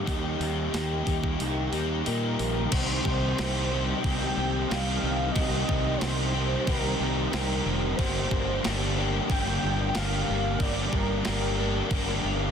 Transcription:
Already playing: A#3 G4 D#5 G5 D6
0.06 D#2 D#3 G3 A#3 D#4 G4, kick, open hi-hat
0.39 D#2 D#3 A#3 D#4 G4, open hi-hat
0.73 D#2 D#3 G3 A#3 D#4 G4, snare, open hi-hat
1.05 D#2 A#3 D#4 G4, kick, open hi-hat
1.24 kick
1.40 C2 D#3 G3 A#3 D#4, open hi-hat
1.72 D#2 G3 A#3 D#4 G4, open hi-hat
2.06 A#2 D#3 G3 A#3 D#4 G4 A#4, open hi-hat
2.39 A#1 A#3, open hi-hat
2.72 C2 C3 D#3 G3 C4 D#4 G4 C5 D#5 G5, kick, crash
2.76 A#4 C6
3.05 C2 D#3 C4 D#4, kick
3.09 G3
3.38 C2 C3 D#3 G3 A#3 C4 G4, snare, crash
3.43 D#4
3.71 G3 C4 D#4 G4
4.03 C2 C3 D#3 G3 A#3 C4 G5, kick, crash
4.07 D#4 G4
4.22 snare
4.37 C2 G3 C4 D#4 G4
4.68 C2 C3 D#3 G3 C4 D#4 G4 F5, snare, crash
5.03 C2 D#3 G3 C4 D#4
5.32 D#5, crash
5.36 C2 C3 D#3 G3 C4 D#4 G4, kick
5.69 C2 D#3 G3 C4 D#4, kick
5.97 C5
6.01 C2 C3 D#3 G3 A#3 C4 G4, snare, crash
6.05 D#4
6.34 G3 C4 D#4 G4
6.65 C2 C3 D#3 G3 A#3 G4 A#4, kick, crash
6.69 C4 D#4
7.00 C2 G3 C4 D#4 G4
7.31 C2 C3 D#3 G3 C4 A#4, snare, crash
7.36 D#4 G4
7.65 F1 D#3 G3 C4 D#4
7.96 G1 G2 D3 G3 A#3 C5, kick, crash
8.00 D4 G4 F5 D6
8.31 G1 G3 A#3 D4, kick
8.63 G1 D3 G3 A#3 G4, snare, crash
8.68 A#3 D4
8.96 A#3 D4 G4
9.00 G3
9.29 G1 G2 D3 G3 A#3 G4 G5, kick, crash
9.34 A#3 D4
9.48 snare
9.62 G1 A#3 D4 F4
9.68 G3
9.94 G1 D3 G3 A#3 D4 G4 F5, snare, crash
10.26 G1 A#3 D4
10.31 G3
10.60 G1 G2 D3 G3 A#3 D4 G4 D5, kick, crash
10.92 G1 G3 A#3 D4 A#4, kick
11.24 G1 D3 G3 A#3 D4, snare, crash
11.28 G4
11.58 G3 A#3 D4 G4
11.91 G1 G2 D3 G3 A#3 D4 G4, kick, crash
12.09 snare
12.23 G1 G3 A#3 D4 F4

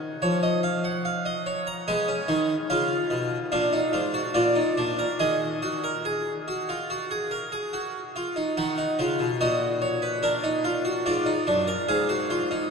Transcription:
Already playing: D#3 G#5
0.22 F3 C#5
0.43 D#5
0.63 F5
0.84 F#5
1.05 F5
1.26 D#5
1.46 C#5
1.67 A#5
1.88 G#3 B3 G#5
2.08 C#4
2.28 D#3 D#4
2.70 C#3 F4 F5
3.10 B2
3.52 A#2 D4 F5
3.73 D#4
3.93 G#2 F4
4.14 F#4
4.34 A#2 F4 D5
4.55 D#4
4.77 A#2 D4
4.99 A#4
5.19 D#3 G#4 D#5
5.62 F#4
5.84 A#4
6.05 G#4
6.48 F#4
6.69 F4
6.90 F#4
7.11 G#4
7.31 A#4
7.52 G#4
7.73 F#4
8.16 F4
8.36 D#4
8.57 D#3 D#4 F#5
8.78 D#4
8.99 C#3 F4
9.19 B2
9.41 A#2 F#4 D#5
9.82 C#5
10.02 B4
10.23 D4 A#4
10.44 D#4
10.64 F4
10.85 F#4
11.06 G#2 F4 D5
11.26 D#4
11.47 F#2 D4
11.67 A#4
11.88 G#2 G#4 F5
12.09 F#4
12.30 F4
12.51 D#4

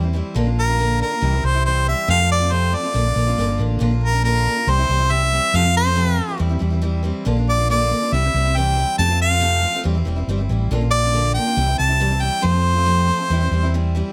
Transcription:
Already playing: E2
0.03 G3 C4 E4
0.13 E3 G3 C4 E4
0.35 A#1 A#2 D3 A#3 D4 F4
0.45 A#3 D4 F4
0.59 A#4
0.68 A#3 D4 F4
0.79 A#2 D3 A#3 D4 F4
1.00 D3 A#3 D4 F4 A#4
1.11 A#3 D4 F4
1.21 C2 C3 E3 G3 C4 E4
1.32 G3 C4 E4
1.43 C2 E3 G3 C4 E4 C5
1.55 G3 C4 E4
1.66 C3 E3 G3 C4 E4 C5
1.86 E3 G3 C4 E4 E5
2.08 F2 C3 F3 A3 C4 F4 F5
2.19 F3 A3 C4 F4
2.31 D5
2.40 F3 A3 C4 F4
2.50 F2 C3 F3 A3 C4 F4 C5
2.72 F3 A3 C4 F4 D5
2.83 F3 A3 C4 F4
2.93 A#1 A#2 D3 A#3 D4 F4
3.05 A#3 D4 F4
3.15 A#1 D3 A#3 D4 F4
3.27 A#3 D4 F4
3.38 G1 A#2 D3 A#3 D4 F4
3.48 A#3 D4 F4
3.58 A1 D3 A#3 D4 F4
3.79 A#1 A#2 D3 A#3 D4 F4
3.91 A#3 D4 F4
4.04 A#4
4.12 A#3 D4 F4
4.24 A#2 D3 A#3 D4 F4 A#4
4.45 D3 A#3 D4 F4
4.57 A#3 D4 F4
4.67 C2 C3 E3 G3 C4 E4 C5
4.79 G3 C4 E4
4.88 C2 E3 G3 C4 E4
4.99 G3 C4 E4
5.10 C3 E3 G3 C4 E4 E5
5.20 G3 C4 E4
5.31 E3 G3 C4 E4
5.54 F2 C3 F3 A3 C4 F4 F5
5.64 F3 C4 F4
5.77 C5
5.84 F3 A3 C4 F4
5.95 F2 C3 F3 A3 C4 F4
6.16 F3 A3 C4 F4
6.29 F3 A3 C4 F4
6.38 E2 E3 G3 C4 E4
6.49 G3 C4 E4
6.59 E2 E3 G3 C4 E4
6.70 G3 C4 E4
6.82 E3 G3 C4 E4
7.03 E3 G3 C4 E4
7.25 A#1 A#2 D3 A#3 D4 F4
7.37 A#3 D4 F4
7.49 D5
7.58 A#3 D4 F4
7.69 A#2 D3 A#3 D4 F4 D5
7.90 D3 A#3 D4 F4
8.02 A#3 D4 F4
8.12 C2 C3 E3 G3 C4 E4 E5
8.24 G3 C4 E4
8.34 C2 E3 G3 C4 E4
8.45 G3 C4 E4
8.57 C3 E3 G3 C4 E4 G5
8.76 E3 G3 C4 E4
8.98 F2 C3 F3 A3 C4 F4 A5
9.09 F3 A3 C4 F4
9.22 F5
9.29 F3 A3 C4 F4
9.40 F2 C3 F3 A3 C4 F4
9.62 F3 A3 C4 F4
9.73 F3 A3 C4 F4
9.84 E2 E3 G3 C4 E4
9.95 G3 C4 E4
10.05 E1 E3 G3 C4 E4
10.16 G3 C4 E4
10.28 G1 E3 G3 C4 E4
10.38 G3 C4 E4
10.49 A1 E3 G3 C4 E4
10.71 A#1 A#2 D3 A#3 D4 F4
10.81 A#3 D4 F4
10.91 D5
11.04 A#3 D4 F4
11.13 A#2 D3 A#3 D4 F4
11.34 D3 A#3 D4 F4 G5
11.46 A#3 D4 F4
11.56 C2 C3 E3 G3 C4 E4
11.68 G3 C4 E4
11.78 C2 E3 G3 C4 E4 A5
11.89 G3 C4 E4
12.00 C3 E3 G3 C4 E4
12.10 G3 C4 E4
12.20 E3 G3 C4 E4 G5
12.41 F2 C3 F3 A3 C4 F4 C5
12.53 F3 A3 C4 F4
12.74 F3 A3 C4 F4
12.85 F2 C3 F3 A3 C4 F4
13.07 F3 A3 C4 F4
13.18 F3 A3 C4 F4
13.30 E2 E3 G3 C4 E4
13.40 G3 C4 E4
13.51 E2 E3 G3 C4 E4
13.63 G3 C4 E4
13.74 E3 G3 C4 E4
13.95 E3 G3 C4 E4

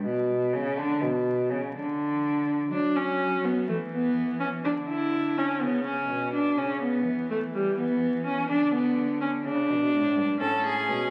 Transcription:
0.05 B2
0.54 C#3
0.77 D3
1.02 B2
1.50 C#3
1.75 D3
2.72 F#3 D4
2.96 C#4
3.44 B3
3.68 E3 A3
3.93 B3
4.40 C#4
4.64 D3 D4
4.89 E4
5.38 C#4
5.61 C#3 B3
5.85 C#4
6.09 B2
6.34 D4
6.57 C#3 C#4
6.83 B3
7.05 E3
7.31 A3
7.54 G3
7.78 B3
8.26 C#4
8.49 D3 D4
8.74 B3
9.21 C#4
9.44 C#3 D4
9.69 B2
9.93 A2
10.16 G2
10.41 A2 C#4 A4
10.65 G#4
10.88 B2

